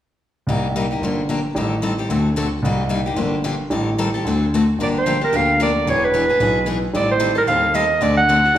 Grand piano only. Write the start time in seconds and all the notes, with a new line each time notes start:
0.47 C2
1.01 G1
1.55 A1
2.09 D2
2.62 C2
3.16 G1
3.70 A1
4.24 D2
4.78 G1
5.32 D2
5.86 E1
6.40 B1
6.94 A1
7.47 D#2
8.01 D2
8.55 A1